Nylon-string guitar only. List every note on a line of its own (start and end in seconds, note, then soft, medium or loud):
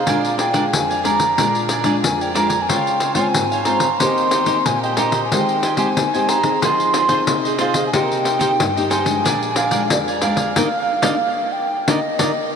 0.07 0.70 A#2 medium
0.07 0.51 G#3 medium
0.07 0.52 D4 medium
0.07 0.52 F4 medium
0.54 0.99 G#3 medium
0.54 0.99 D4 medium
0.54 1.00 F4 medium
0.73 1.35 F2 medium
1.04 1.24 G#3 medium
1.04 1.24 D4 soft
1.04 1.25 F4 medium
1.38 2.01 A#2 medium
1.38 1.69 G#3 medium
1.38 1.69 D4 medium
1.38 1.69 F4 medium
1.85 2.30 G#3 medium
1.85 2.30 D4 medium
1.85 2.30 F4 medium
2.03 2.66 F2 medium
2.35 2.55 G#3 medium
2.35 2.55 D4 medium
2.35 2.56 F4 medium
2.69 3.31 C#3 medium
2.69 3.13 G#3 medium
2.69 3.14 F4 medium
3.15 3.61 G#3 medium
3.15 3.61 C4 medium
3.15 3.61 F4 medium
3.34 3.97 G#2 medium
3.66 3.86 G#3 soft
3.66 3.86 C4 medium
3.66 3.87 F4 medium
4.00 4.63 D#3 medium
4.00 4.44 A#3 soft
4.00 4.44 C4 medium
4.00 4.45 G4 medium
4.46 4.92 A#3 medium
4.46 4.92 C4 medium
4.46 4.92 G4 medium
4.66 5.28 A#2 medium
4.97 5.25 A#3 medium
4.97 5.26 C4 medium
4.97 5.26 G4 medium
5.31 5.94 D#3 medium
5.31 5.62 G#3 medium
5.31 5.62 C4 medium
5.31 5.63 G4 medium
5.77 6.07 G#3 medium
5.77 6.07 C4 medium
5.77 6.07 G4 medium
5.97 6.59 D#3 medium
6.14 6.42 G#3 medium
6.14 6.42 C4 medium
6.14 6.42 G4 medium
6.43 7.05 C4 medium
6.43 7.05 D#4 medium
6.43 7.05 G#4 medium
6.62 7.25 F3 medium
7.09 7.54 C4 medium
7.09 7.55 D#4 medium
7.09 7.55 G#4 medium
7.28 7.91 C3 medium
7.60 7.88 C4 medium
7.60 7.88 D#4 medium
7.60 7.88 G#4 medium
7.94 8.56 C3 medium
7.94 8.38 A#3 medium
7.94 8.38 D#4 medium
7.94 8.38 G4 medium
8.40 8.69 A#3 medium
8.40 8.70 D#4 medium
8.40 8.70 G4 medium
8.60 9.22 G2 medium
8.77 9.04 A#3 medium
8.77 9.04 D#4 medium
8.77 9.05 G4 medium
9.06 9.68 F3 medium
9.06 9.68 G#3 medium
9.06 9.68 D4 medium
9.26 9.88 A#2 medium
9.72 10.17 F3 medium
9.72 10.17 G#3 medium
9.72 10.18 D4 medium
10.22 10.51 F3 medium
10.22 10.51 G#3 medium
10.22 10.51 D4 medium
10.57 10.67 A#3 medium
10.57 10.67 D4 medium
10.57 10.67 D#4 medium
11.03 11.15 A#3 medium
11.03 11.15 D4 medium
11.03 11.15 D#4 medium
11.88 11.98 A#3 medium
11.88 11.99 D4 medium
11.88 11.98 D#4 medium
12.19 12.31 A#3 medium
12.19 12.31 D4 medium
12.19 12.31 D#4 medium